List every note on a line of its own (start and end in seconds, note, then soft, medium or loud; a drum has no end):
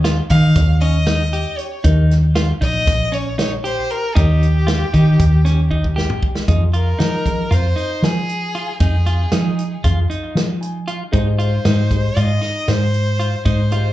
0.00 0.19 D#2 medium
0.04 0.19 F4 medium
0.04 snare loud
0.04 closed hi-hat medium
0.30 0.53 D#3 medium
0.30 0.60 D#4 medium
0.30 0.78 F5 loud
0.30 kick medium
0.30 closed hi-hat medium
0.55 1.44 D#2 medium
0.55 0.74 D#3 medium
0.55 0.74 D#4 soft
0.55 0.74 G4 medium
0.55 0.75 C#5 medium
0.55 kick loud
0.55 snare soft
0.55 closed hi-hat medium
0.80 0.97 C#4 medium
0.80 1.59 D#5 loud
0.80 closed hi-hat medium
1.07 1.22 D#4 medium
1.07 snare loud
1.07 closed hi-hat medium
1.33 1.63 G4 medium
1.33 closed hi-hat medium
1.57 1.84 C#5 medium
1.57 closed hi-hat medium
1.84 2.51 D#2 loud
1.84 2.02 D#3 medium
1.84 2.14 D#4 medium
1.84 2.03 D#4 medium
1.84 2.03 G4 medium
1.84 2.03 A#4 medium
1.84 kick loud
1.84 closed hi-hat medium
2.11 snare soft
2.11 closed hi-hat medium
2.35 2.51 F4 medium
2.35 snare loud
2.35 closed hi-hat medium
2.61 2.84 A#1 medium
2.61 2.91 D#4 medium
2.61 3.15 D#5 loud
2.61 kick medium
2.61 closed hi-hat medium
2.87 3.76 A#1 medium
2.87 kick loud
2.87 snare soft
2.87 closed hi-hat medium
3.12 3.27 C#4 medium
3.12 3.38 C#5 medium
3.12 closed hi-hat medium
3.38 3.53 D#4 medium
3.38 3.51 C#5 loud
3.38 snare loud
3.38 closed hi-hat medium
3.64 3.94 G4 medium
3.64 3.93 C5 medium
3.64 closed hi-hat medium
3.91 4.17 A#4 loud
3.91 closed hi-hat soft
4.15 4.83 D#2 loud
4.15 4.35 D#3 medium
4.15 4.46 D#4 medium
4.15 4.35 D#4 medium
4.15 5.96 G4 medium
4.15 4.35 G4 soft
4.15 4.35 C#5 medium
4.15 kick loud
4.15 closed hi-hat medium
4.43 closed hi-hat soft
4.67 4.82 F4 medium
4.67 snare loud
4.67 closed hi-hat medium
4.94 5.16 D#3 medium
4.94 5.24 D#4 medium
4.94 kick medium
4.94 closed hi-hat medium
5.20 6.08 D#2 medium
5.20 kick loud
5.20 closed hi-hat medium
5.45 5.60 C#4 medium
5.45 snare soft
5.45 closed hi-hat medium
5.71 5.86 D#4 medium
5.71 kick medium
5.84 kick medium
5.96 6.26 G4 medium
5.96 snare medium
6.10 mid tom medium
6.23 kick medium
6.35 snare medium
6.48 6.92 F2 medium
6.48 6.66 F3 medium
6.48 6.63 D#4 medium
6.48 6.66 F4 medium
6.48 6.67 G#4 medium
6.48 6.67 D#5 medium
6.48 kick medium
6.48 closed hi-hat medium
6.74 6.89 F4 medium
6.74 7.55 A#4 medium
6.74 closed hi-hat medium
6.99 7.44 F3 medium
6.99 7.29 D#4 medium
6.99 snare medium
6.99 closed hi-hat medium
7.25 7.43 F3 soft
7.25 7.44 F4 soft
7.25 7.44 G#4 soft
7.25 7.44 D#5 medium
7.25 kick medium
7.25 closed hi-hat medium
7.51 7.73 F2 medium
7.51 7.66 F4 medium
7.51 8.06 C5 medium
7.51 closed hi-hat medium
7.76 8.06 D#4 medium
7.76 closed hi-hat soft
8.02 8.69 F3 medium
8.02 8.80 G#4 medium
8.02 snare medium
8.02 closed hi-hat medium
8.29 closed hi-hat medium
8.55 8.70 F4 medium
8.55 closed hi-hat soft
8.80 9.25 F2 medium
8.80 8.95 D#4 medium
8.80 9.80 G#4 medium
8.80 kick loud
8.80 closed hi-hat medium
9.06 9.21 F4 medium
9.06 closed hi-hat medium
9.32 9.76 F3 medium
9.32 9.50 F3 medium
9.32 9.62 D#4 medium
9.32 9.50 F4 soft
9.32 9.51 G#4 soft
9.32 9.51 D#5 medium
9.32 snare loud
9.32 closed hi-hat medium
9.59 closed hi-hat medium
9.84 10.06 F2 medium
9.84 10.02 F3 medium
9.84 10.02 F4 medium
9.84 9.99 F4 medium
9.84 10.02 G#4 medium
9.84 10.03 F5 medium
9.84 kick loud
9.84 closed hi-hat medium
10.10 10.40 D#4 medium
10.10 closed hi-hat medium
10.35 11.01 F3 medium
10.35 snare medium
10.35 closed hi-hat medium
10.61 10.85 G#5 medium
10.61 closed hi-hat medium
10.88 11.03 F4 medium
10.88 11.11 F5 medium
10.88 closed hi-hat soft
11.12 11.58 G#2 loud
11.12 11.49 G#3 medium
11.12 11.49 D#4 medium
11.12 11.28 D#4 medium
11.12 11.49 G4 medium
11.12 11.49 C5 medium
11.12 kick loud
11.12 closed hi-hat medium
11.39 11.54 F4 medium
11.39 12.20 C5 medium
11.39 closed hi-hat soft
11.65 12.09 G#2 medium
11.65 11.95 D#4 medium
11.65 snare loud
11.65 closed hi-hat medium
11.91 12.09 G#3 medium
11.91 12.09 D#4 medium
11.91 12.09 G4 medium
11.91 12.09 C5 medium
11.91 kick medium
11.91 closed hi-hat medium
12.16 12.38 G#2 medium
12.16 12.32 F4 medium
12.16 12.70 D#5 loud
12.16 closed hi-hat medium
12.42 12.72 D#4 medium
12.42 snare soft
12.42 closed hi-hat soft
12.68 13.34 G#2 medium
12.68 13.46 C5 loud
12.68 snare medium
12.68 closed hi-hat medium
12.94 closed hi-hat medium
13.20 13.35 F4 medium
13.20 closed hi-hat soft
13.45 13.90 G#2 medium
13.45 13.60 D#4 medium
13.45 13.93 C5 medium
13.45 kick medium
13.45 closed hi-hat medium
13.71 13.93 G#3 medium
13.71 13.93 D#4 medium
13.71 13.87 F4 medium
13.71 13.93 G4 medium
13.71 13.93 C5 medium
13.71 closed hi-hat medium